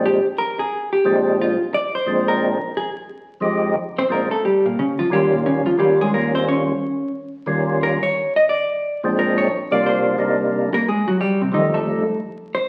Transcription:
Already playing: A#2 F3 G#3 C4 D4
0.06 G4
0.38 A#4
0.59 G#4
0.93 G4
1.04 A#2 F3 G#3 C4 D4
1.41 F4
1.74 D5
1.95 C5
2.06 A#2 F3 G#3 C4 D4
2.28 A#4
2.77 G#4
3.40 F2 F3 G#3 D#4 G4
3.98 C4 C5
4.09 A#2 F3 G#3 A#3 C4 D4 A#4
4.31 A3 A4
4.45 G3 G4
4.65 A#2 A#3
4.79 C#3 C#4
4.99 F3 F4
5.10 D#2 D#3 G3 C#4 F4 G4
5.32 A#2 A#3
5.46 C#3 C#4
5.66 F3 F4
5.78 D#2 D#3 G3 C#4 F4 G4
6.01 G#3 G#4
6.14 A#3 A#4
6.35 C4 C5
6.48 C#4 C#5
7.46 D#2 D#3 G3 C#4 F4
7.83 A#4
8.03 C#5
8.36 D#5
8.49 D5
9.03 A#2 F3 G#3 C4 D4
9.19 A#4
9.38 C#5
9.71 C3 G3 A#3 D4 F4 D5
9.86 C5
10.18 C3 G3 A#3 D4 D#4
10.74 A#3 A#4
10.88 G#3 G#4
11.08 F#3 F#4
11.21 G3 G4
11.41 C3 C4
11.52 F2 D#3 F3 G3 A3 D#4
11.74 A3 A4
12.55 C5

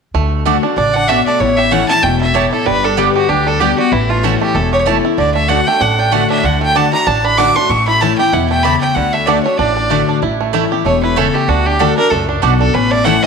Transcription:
0.14 D2 D3 A3
0.45 D3 A3 D4 F#4 D5 F#5
0.63 D4 F#4
0.77 A1 C#3 D4 D5
0.94 D4 F#5
1.08 B2 A3 D4 F#4 D5 E5 F#5
1.26 A3 D5
1.40 A1 A2 E4 C#5
1.57 G4 E5
1.71 E3 A3 C#4 E4 C#5 F#5 A5
1.89 C#4 E4 A5
2.03 E1 B2 A3 G5
2.21 E4 E5
2.34 A2 A3 E4 G4 C#5 A5
2.52 E4 A4
2.66 G1 G2 G3 B4
2.84 D4 A4
2.97 D3 G3 B3 G4 D5 G5
3.15 F#4 G4
3.29 D2 D3 D4 G4
3.47 G3 A4
3.60 D3 G3 B3 G4 D5 G5
3.78 G3 B3 F#4 G4
3.92 A1 A2 E3 E4
4.10 A3 F4
4.23 E3 A3 C#4 E4 F#4 C#5 A5
4.41 A3 G4
4.55 E1 E2 E4 A4
4.73 G4 C#5
4.86 E3 A3 C#4 E4 C#5 A5
5.04 C#4 E4
5.18 D2 D3 D5
5.34 A3 E5
5.48 D3 A3 D4 F#4 D5 F#5
5.67 A3 D4 F#4 G5
5.80 A1 A2 D4 F#5
5.99 D4 G5
6.12 D3 A3 D4 F#4 D5 F#5
6.30 D4 E5
6.43 D2 D3 F#5
6.61 A3 G5
6.75 D3 A3 D4 F#4 D5 F#5 A5
6.93 A3 D4 F#4 A#5
7.07 A1 A2 D4 A5
7.24 D4 B5
7.38 D3 A3 D4 F#4 D5 F#5 D6
7.56 D4 F#4 C6
7.69 A1 A2 A3 C#6
7.88 E4 B5
8.01 E3 A3 C#4 E4 C#5 A5
8.18 C#4 E4 G4 G5
8.33 E2 B2 E4 F#5
8.50 A3 G5
8.63 C#3 A3 E4 G4 C#5 A5 B5
8.81 A3 G5
8.95 D2 D3 F#5
9.13 A3 E5
9.26 D3 A3 D4 F#4 D5 F#5
9.43 A3 D4 F#4 C#5
9.58 A1 A2 D4 D5
9.77 D4
9.90 D3 A3 D4 F#4 D5 F#5
10.09 D4
10.22 A1 A2 E4
10.41 A3
10.53 E3 A3 C#4 E4 C#5 A5
10.71 C#4 E4 G4
10.85 E1 B2 A3 C#5
11.03 E4 B4
11.16 C#3 A3 C#4 E4 A4 C#5 A5
11.34 A3 G4
11.48 D2 D3 D4 F#4
11.66 D4 G4
11.79 D3 A3 D4 F#4 A4 D5 F#5
11.97 D4 F#4 A#4
12.11 C#2 F#2 A3 A4
12.29 D4
12.42 B1 B2 A3 D4 F#4 D5 F#5
12.60 D4 A4
12.74 A1 A2 C#4 B4
12.91 A3 D5
13.05 E3 A3 C#4 E4 C#5 F#5 A5
13.23 E4 D#5

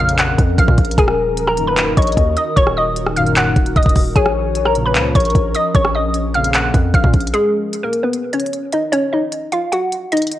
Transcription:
Already playing: A#1 F3 C#4 A#4
0.00 F2 A#2 C#3 F5 F6
0.09 closed hi-hat
0.18 F#5 F#6, clap, closed hi-hat
0.38 F2, kick, closed hi-hat
0.58 A#1 F5 F6, kick, closed hi-hat
0.68 A#2, kick
0.78 A#1, kick, closed hi-hat, open hi-hat
0.85 closed hi-hat
0.91 closed hi-hat
0.98 D#1 D#3 D#4 F#4 G#4 A#4 G#5, kick, closed hi-hat
1.08 cross-stick
1.37 closed hi-hat
1.47 A#4 A#5, cross-stick
1.57 F#2 A#2 D#3, closed hi-hat
1.67 B4 B5
1.77 clap, closed hi-hat
1.97 A#1 C#5 D#5 C#6, kick, closed hi-hat
2.02 closed hi-hat
2.07 closed hi-hat
2.12 closed hi-hat
2.17 D#2, kick, closed hi-hat
2.37 D#5 D#6, closed hi-hat
2.56 D#1 C#5 C#6, kick, closed hi-hat
2.67 cross-stick
2.77 D#5 D#6
2.96 closed hi-hat
3.06 cross-stick
3.16 F#2 A#2 D#3 F5 F6, closed hi-hat
3.26 closed hi-hat
3.36 F#5 F#6, clap, closed hi-hat
3.56 D#1, kick, closed hi-hat
3.66 closed hi-hat
3.76 D#1 D#5 D#6, kick, closed hi-hat
3.83 D#1, kick, closed hi-hat
3.89 closed hi-hat
3.96 D#1, kick, open hi-hat
4.16 A#1 F3 C#4 G#4 C#5 G#5, kick, closed hi-hat
4.26 cross-stick
4.55 closed hi-hat
4.65 A#4 A#5, cross-stick
4.75 A#2 C#3 F3, closed hi-hat
4.86 B4 B5
4.95 C#2, clap, closed hi-hat
5.15 A#1 A#4 C#5 C#6, kick, closed hi-hat
5.20 closed hi-hat
5.25 closed hi-hat
5.30 closed hi-hat
5.35 A#1, kick, closed hi-hat
5.55 D#5 D#6, closed hi-hat
5.75 A#1 C#5 C#6, kick, closed hi-hat
5.85 cross-stick
5.95 D#5 D#6
6.14 closed hi-hat
6.34 F2 A#2 C#3 F5 F6, closed hi-hat
6.44 closed hi-hat
6.54 F#5 F#6, clap, closed hi-hat
6.74 F2, kick, closed hi-hat
6.94 A#1 F5 F6, kick, closed hi-hat
7.04 A#2, kick
7.14 A#1, kick, closed hi-hat, open hi-hat
7.20 closed hi-hat
7.27 closed hi-hat
7.34 G#3 G#4, closed hi-hat
7.73 closed hi-hat
7.83 A#3 A#4
7.93 closed hi-hat
8.03 B3 B4
8.13 closed hi-hat
8.33 C#4 C#5, closed hi-hat
8.40 closed hi-hat
8.46 closed hi-hat
8.53 closed hi-hat
8.72 D#4 D#5, closed hi-hat
8.92 C#4 C#5, closed hi-hat
9.13 D#4 D#5
9.32 closed hi-hat
9.52 F4 F5, closed hi-hat
9.72 F#4 F#5, closed hi-hat
9.92 closed hi-hat
10.12 D#4 D#5, closed hi-hat
10.17 closed hi-hat
10.22 closed hi-hat
10.27 closed hi-hat
10.31 closed hi-hat

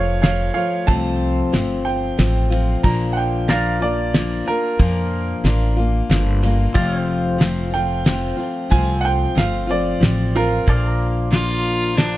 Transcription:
Already playing: F1 F3 A3 F4 C#5 F5
0.21 F3 A3 F4 C#5 F5, snare, ride
0.54 F3 A3 F4 C#5 F5
0.87 C2 F2 C3 F3 A3 C4 F4 A5, kick, ride
1.52 G1 F3 A3 C4 F4, snare, ride
1.85 G5
2.18 A1 F3 A3 C4 F4, snare, ride
2.50 F3 A3 C4 F4, ride
2.83 A#1 A#2 F3 A#3 D4 F4 A#5, kick, ride
3.13 F#5
3.17 G5
3.48 F3 A#3 D4 F4 A#4 D5 F5, snare, ride
3.80 A#3 D4 F4 D5
4.13 F3 A#3 D4 F4, snare, ride
4.46 A#3 D4 F4 A#4
4.79 F2 A#2 F3 A#3 D4 F4, kick, ride
5.44 A1 F3 A#3 D4 F4, snare, ride
5.77 A#3 D4 F4
6.09 G1 F3 A#3 D4 F4, snare, ride
6.43 A#3 D4 F4, ride
6.74 F1 F2 C3 F3 A3 C4 F4 D5 F5, kick, ride
7.00 C5
7.38 F3 A3 C4 F4, snare, ride
7.71 F3 A3 C4 F4 G5
8.04 F3 A3 C4 F4, snare, ride
8.37 F3 A3 C4 F4
8.70 C2 F2 C3 F3 A3 C4 F4 G#5, kick, ride
9.01 F#5
9.05 G5
9.35 G1 F3 A3 C4 F4 F5, snare, ride
9.67 F3 A3 C4 F4 D5
10.00 A1 F3 C4 F4, snare, ride
10.36 F4 A#4, ride
10.66 A#1 A#2 F3 A#3 D4 F4 A4, kick, ride
10.70 D5 F5
10.89 A#4
11.30 F3 A#3 D4 F4, snare, ride
11.95 F3 A#3 D4 F4, snare, ride

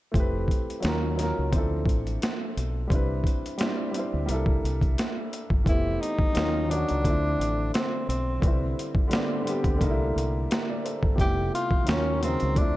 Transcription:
0.12 F1 A3 C4 E4, kick, closed hi-hat
0.17 G4 B4
0.48 kick, closed hi-hat
0.70 closed hi-hat
0.80 D#2 F#3 C#4 D#4, closed hi-hat
0.85 F4 A#4, snare
1.15 F#3 C#4 D#4, closed hi-hat
1.20 F4 A#4, snare
1.39 C#2
1.50 D2 F3 C4, kick, closed hi-hat
1.54 D4 E4 A4
1.86 A1, kick, closed hi-hat
2.07 closed hi-hat
2.22 snare, closed hi-hat
2.57 B1, closed hi-hat
2.88 C2 G3 C4 D4, kick, closed hi-hat
2.94 E4 B4
3.24 kick, closed hi-hat
3.46 closed hi-hat
3.58 G3 C4 D4, snare, closed hi-hat
3.63 E4 D5
3.91 G3 C4 D4, closed hi-hat
3.97 E4 C5
4.14 D2
4.26 C2 G3 A#3, closed hi-hat
4.30 D4 E4 A4
4.46 kick
4.64 C2, closed hi-hat
4.81 kick, closed hi-hat
4.98 snare, closed hi-hat
5.33 closed hi-hat
5.50 G1, kick
5.64 F1 E3 A3 B3, kick, closed hi-hat
5.69 C4 E4 G4
6.01 D#4, closed hi-hat
6.19 kick
6.33 D#2 D#3 F#3 A#3, closed hi-hat
6.37 C#4 F4, snare
6.67 D#3 F#3 A#3 D4, closed hi-hat
6.73 F#4 C#5
6.88 C#2, closed hi-hat
7.02 D2 D3 F3 A3, kick, closed hi-hat
7.08 C4 E4
7.40 A1, closed hi-hat
7.74 C4, snare, closed hi-hat
8.09 B1 C4, closed hi-hat
8.39 C2 D3 G3, kick
8.43 C4 E4 B4, closed hi-hat
8.79 closed hi-hat
8.95 kick
9.08 D3 G3 B3, closed hi-hat
9.13 C4 D4, snare
9.42 D3 G3
9.46 B3 C4, closed hi-hat
9.50 G4
9.64 D2, kick, closed hi-hat
9.77 D3 G3 A3
9.81 C2 A#3 D#4, kick, closed hi-hat
9.91 E4
10.16 C2, closed hi-hat
10.50 G4 A#4, snare, closed hi-hat
10.70 A#4 D5
10.85 A4 C5, closed hi-hat
11.03 G1 A4, kick
11.16 F1 C3 G3 A3, kick, closed hi-hat
11.20 B3 E4 G4
11.55 F4, closed hi-hat
11.71 kick
11.84 D#3 F#3, closed hi-hat
11.88 D#2 A#3 C#4 F4, snare
12.19 D#3 F#3
12.23 C#3 A#3 C4 D#4, closed hi-hat
12.40 C#2, closed hi-hat
12.53 D3 F3, kick, closed hi-hat
12.57 A3 C4 D4 E4

